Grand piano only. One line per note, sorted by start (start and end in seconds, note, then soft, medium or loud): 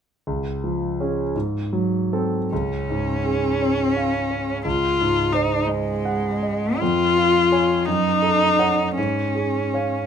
0.27 1.32 C#2 soft
0.64 1.21 F3 soft
1.00 1.32 C#4 soft
1.00 1.32 G#4 soft
1.35 2.48 G#2 soft
1.73 2.37 F#3 soft
2.13 2.48 C4 soft
2.13 2.48 A4 soft
2.53 4.62 C#2 soft
2.90 3.48 G#2 soft
3.25 3.82 G#4 soft
3.62 4.17 C#5 soft
3.97 4.52 F5 soft
4.31 4.65 C#5 soft
4.65 6.76 C#2 soft
5.01 5.55 G#2 soft
5.34 5.90 C5 soft
5.69 6.28 D#5 soft
6.05 6.66 F#5 soft
6.42 6.80 D#5 soft
6.82 7.84 F2 soft
7.18 7.73 F4 soft
7.52 7.83 C#5 soft
7.52 7.84 G#5 soft
7.88 8.94 F#2 soft
8.22 8.82 A4 soft
8.59 8.93 C#5 soft
8.59 8.93 F#5 soft
8.98 10.06 G#2 soft
9.35 9.95 G#4 soft
9.74 10.06 C#5 soft
9.74 10.06 F5 soft